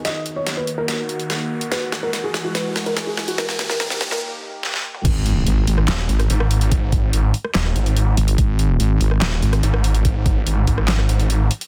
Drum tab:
CC |----------------|----------------|----------------|x---------------|
HH |x-x-x-x-x-xxx--x|x-x-x-x-x-xxx--x|x-x-x-x---------|x-x-x-o-x-xxx-ox|
CP |----------------|----------------|----------------|--------x-------|
SD |o---o---o---o---|o-o-o-o-o-o-o-o-|oooooooo----oo--|-------ro--r-r--|
T2 |----------------|----------------|---------------o|----------------|
BD |----------------|----------------|----------------|o---------------|

CC |----------------|----------------|----------------|
HH |x-x-x-o-x-xxx-ox|x-x-x-o-x-xxx-ox|x-x-x-o-x-xxx-ox|
CP |--------x-------|--------x-------|--------x-------|
SD |-------ror------|-------ro--r-r--|-------ror------|
T2 |----------------|----------------|----------------|
BD |o-o-------------|o---------------|o-o---o---------|